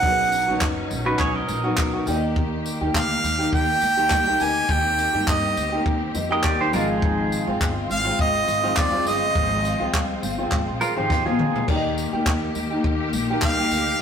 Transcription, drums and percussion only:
0.03 kick loud
0.32 tambourine medium
0.61 kick loud
0.61 clap loud
0.91 tambourine medium
1.19 kick loud
1.19 clap medium
1.49 tambourine medium
1.77 kick loud
1.77 clap loud
2.07 tambourine medium
2.36 kick loud
2.66 tambourine medium
2.94 kick loud
2.94 clap loud
3.25 tambourine medium
3.53 kick loud
3.81 tambourine medium
4.10 kick loud
4.10 clap loud
4.40 tambourine medium
4.69 kick loud
4.98 tambourine medium
5.27 kick loud
5.27 clap loud
5.57 tambourine medium
5.86 kick loud
6.15 tambourine medium
6.43 kick loud
6.43 clap loud
6.73 tambourine medium
7.02 kick loud
7.32 tambourine medium
7.61 kick loud
7.61 clap loud
7.91 tambourine medium
8.19 kick loud
8.48 tambourine medium
8.77 kick loud
8.77 clap loud
9.07 tambourine medium
9.35 kick loud
9.65 tambourine medium
9.94 kick loud
9.94 clap loud
10.23 tambourine medium
10.52 kick loud
10.52 clap medium
10.81 tambourine medium
11.10 kick loud
11.10 snare medium
11.26 high tom medium
11.39 mid tom medium
11.56 floor tom loud
11.68 kick loud
11.68 crash loud
11.98 tambourine medium
12.26 kick loud
12.26 clap loud
12.55 tambourine medium
12.84 kick loud
13.13 tambourine medium
13.42 kick loud
13.42 clap loud
13.71 tambourine medium

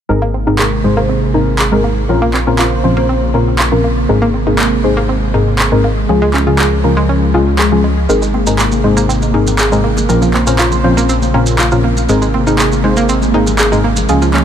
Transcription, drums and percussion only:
0.59 clap loud
1.59 clap loud
2.34 clap medium
2.59 clap loud
3.59 clap loud
4.59 clap loud
5.59 clap loud
6.34 clap medium
6.59 clap loud
7.59 clap loud
8.10 maracas medium
8.22 maracas soft
8.34 high conga medium
8.47 maracas medium
8.59 clap loud
8.59 maracas medium
8.72 high conga medium
8.72 maracas soft
8.97 maracas medium
9.10 maracas medium
9.22 high conga medium
9.22 maracas soft
9.47 low conga medium
9.47 maracas medium
9.59 clap loud
9.59 high conga medium
9.59 maracas medium
9.72 maracas soft
9.97 high conga medium
9.97 low conga medium
9.97 maracas medium
10.09 maracas medium
10.22 maracas soft
10.34 clap medium
10.34 high conga medium
10.47 maracas medium
10.59 clap loud
10.59 maracas medium
10.72 high conga medium
10.72 low conga medium
10.72 maracas soft
10.98 maracas medium
11.09 maracas medium
11.22 high conga medium
11.22 maracas soft
11.46 maracas medium
11.59 clap loud
11.59 high conga medium
11.59 maracas medium
11.72 maracas soft
11.97 high conga medium
11.97 maracas medium
12.09 maracas medium
12.22 maracas soft
12.34 high conga medium
12.47 maracas medium
12.59 clap loud
12.59 maracas medium
12.72 high conga medium
12.72 maracas soft
12.97 maracas medium
13.09 maracas medium
13.22 high conga medium
13.22 maracas soft
13.47 low conga medium
13.47 maracas medium
13.59 clap loud
13.59 high conga medium
13.59 maracas medium
13.72 maracas soft
13.96 high conga medium
13.96 low conga medium
13.96 maracas medium
14.09 maracas medium
14.22 maracas soft
14.34 clap medium
14.34 high conga medium

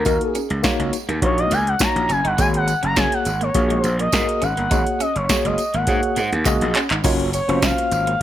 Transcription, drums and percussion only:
0.05 kick loud
0.05 closed hi-hat medium
0.05 tambourine medium
0.21 closed hi-hat soft
0.35 closed hi-hat medium
0.35 tambourine medium
0.50 closed hi-hat soft
0.64 kick loud
0.64 snare loud
0.64 closed hi-hat medium
0.64 tambourine medium
0.80 closed hi-hat medium
0.93 closed hi-hat medium
0.93 tambourine medium
1.09 closed hi-hat medium
1.22 kick loud
1.22 closed hi-hat loud
1.38 closed hi-hat soft
1.51 closed hi-hat medium
1.51 tambourine soft
1.67 closed hi-hat medium
1.79 kick loud
1.79 snare loud
1.79 closed hi-hat medium
1.79 tambourine loud
1.96 closed hi-hat medium
2.09 closed hi-hat medium
2.09 tambourine soft
2.25 closed hi-hat medium
2.38 kick loud
2.38 closed hi-hat medium
2.38 tambourine medium
2.54 closed hi-hat medium
2.67 closed hi-hat medium
2.67 tambourine soft
2.83 closed hi-hat medium
2.96 kick loud
2.96 snare loud
2.96 closed hi-hat medium
2.96 tambourine medium
3.12 closed hi-hat medium
3.25 closed hi-hat medium
3.25 tambourine medium
3.41 closed hi-hat medium
3.54 kick loud
3.54 closed hi-hat loud
3.54 tambourine soft
3.70 closed hi-hat medium
3.84 closed hi-hat medium
3.84 tambourine soft
3.99 closed hi-hat medium
4.12 kick loud
4.12 snare loud
4.12 closed hi-hat medium
4.12 tambourine medium
4.29 closed hi-hat medium
4.42 closed hi-hat medium
4.42 tambourine soft
4.57 closed hi-hat soft
4.71 kick loud
4.71 closed hi-hat medium
4.71 tambourine medium
4.87 closed hi-hat medium
5.00 closed hi-hat medium
5.00 tambourine medium
5.16 closed hi-hat medium
5.29 kick loud
5.29 snare loud
5.29 closed hi-hat medium
5.29 tambourine medium
5.45 closed hi-hat medium
5.58 closed hi-hat medium
5.58 tambourine medium
5.74 closed hi-hat medium
5.87 kick loud
5.87 closed hi-hat loud
5.87 tambourine soft
6.03 closed hi-hat medium
6.16 closed hi-hat medium
6.16 tambourine soft
6.33 closed hi-hat medium
6.45 kick loud
6.45 clap medium
6.45 closed hi-hat medium
6.45 tambourine loud
6.61 closed hi-hat medium
6.75 clap medium
6.75 closed hi-hat medium
6.75 tambourine soft
6.90 clap medium
6.90 closed hi-hat medium
7.04 kick loud
7.04 closed hi-hat loud
7.04 crash loud
7.04 tambourine medium
7.20 closed hi-hat medium
7.33 closed hi-hat medium
7.33 tambourine medium
7.49 closed hi-hat medium
7.62 kick loud
7.62 snare loud
7.62 closed hi-hat medium
7.62 tambourine medium
7.78 closed hi-hat medium
7.91 closed hi-hat medium
7.91 tambourine medium
8.07 closed hi-hat medium

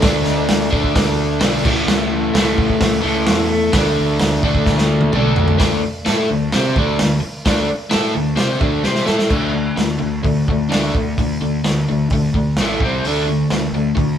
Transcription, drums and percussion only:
0.02 kick loud
0.02 snare loud
0.02 open hi-hat medium
0.49 snare loud
0.49 open hi-hat medium
0.73 kick medium
0.84 kick medium
0.96 kick loud
0.96 snare loud
0.96 open hi-hat medium
1.41 snare loud
1.41 open hi-hat medium
1.65 kick loud
1.65 crash loud
1.88 snare loud
2.35 snare loud
2.35 open hi-hat medium
2.58 kick medium
2.70 kick medium
2.81 kick loud
2.81 snare loud
2.81 open hi-hat medium
3.27 snare loud
3.27 open hi-hat medium
3.73 kick loud
3.73 snare loud
3.73 open hi-hat medium
4.20 snare loud
4.20 open hi-hat medium
4.43 kick medium
4.55 kick medium
4.66 kick medium
4.66 snare medium
4.78 snare medium
5.01 high tom medium
5.13 mid tom loud
5.36 floor tom loud
5.48 floor tom medium
5.60 kick loud
5.60 snare loud
5.60 open hi-hat medium
6.06 snare loud
6.06 open hi-hat medium
6.52 snare loud
6.52 open hi-hat medium
6.76 kick loud
6.99 snare loud
6.99 open hi-hat medium
7.46 kick loud
7.46 snare loud
7.46 open hi-hat medium
7.91 snare loud
7.91 open hi-hat medium
8.37 snare loud
8.37 open hi-hat medium
8.61 kick loud
8.84 snare medium
8.95 snare medium
9.06 snare medium
9.19 snare medium
9.30 kick loud
9.30 crash loud
9.77 snare medium
9.77 open hi-hat medium
10.24 kick loud
10.24 open hi-hat medium
10.48 kick medium
10.72 snare loud
10.72 open hi-hat medium
10.95 kick medium
11.18 kick loud
11.18 open hi-hat medium
11.64 snare medium
11.64 open hi-hat medium
12.10 kick loud
12.10 open hi-hat medium
12.34 kick medium
12.57 snare loud
12.57 open hi-hat medium
12.80 kick medium
13.05 open hi-hat medium
13.50 snare medium
13.50 open hi-hat soft
13.97 kick loud
13.97 open hi-hat soft

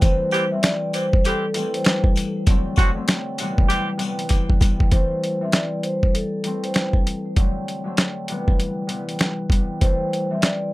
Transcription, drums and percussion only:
0.01 kick loud
0.01 closed hi-hat medium
0.01 sleigh bells soft
0.31 closed hi-hat medium
0.31 sleigh bells medium
0.63 snare loud
0.63 closed hi-hat loud
0.63 sleigh bells medium
0.93 closed hi-hat medium
0.93 sleigh bells medium
1.13 kick loud
1.24 closed hi-hat medium
1.24 sleigh bells medium
1.54 closed hi-hat medium
1.54 sleigh bells medium
1.74 closed hi-hat medium
1.84 snare loud
1.84 closed hi-hat medium
1.84 sleigh bells medium
2.04 kick loud
2.16 closed hi-hat medium
2.16 sleigh bells medium
2.46 kick loud
2.46 closed hi-hat medium
2.46 sleigh bells soft
2.76 kick loud
2.76 closed hi-hat medium
2.76 sleigh bells medium
3.08 snare loud
3.08 closed hi-hat loud
3.08 sleigh bells medium
3.38 closed hi-hat medium
3.38 sleigh bells medium
3.58 kick loud
3.69 closed hi-hat medium
3.69 sleigh bells medium
3.99 closed hi-hat medium
3.99 sleigh bells medium
4.19 closed hi-hat medium
4.29 kick medium
4.29 closed hi-hat medium
4.29 sleigh bells medium
4.50 kick medium
4.61 kick loud
4.61 closed hi-hat medium
4.61 sleigh bells medium
4.80 kick loud
4.91 kick loud
4.91 closed hi-hat medium
5.24 closed hi-hat medium
5.52 snare loud
5.52 closed hi-hat loud
5.83 closed hi-hat medium
6.03 kick medium
6.15 closed hi-hat medium
6.44 closed hi-hat medium
6.64 closed hi-hat medium
6.74 snare loud
6.74 closed hi-hat medium
6.93 kick medium
7.07 closed hi-hat medium
7.36 kick loud
7.36 closed hi-hat medium
7.68 closed hi-hat medium
7.97 snare loud
7.97 closed hi-hat medium
8.28 closed hi-hat medium
8.48 kick medium
8.60 closed hi-hat medium
8.89 closed hi-hat medium
9.09 closed hi-hat medium
9.19 snare loud
9.19 closed hi-hat medium
9.50 kick loud
9.50 closed hi-hat medium
9.81 kick loud
9.81 closed hi-hat medium
10.13 closed hi-hat medium
10.42 snare loud
10.42 closed hi-hat loud

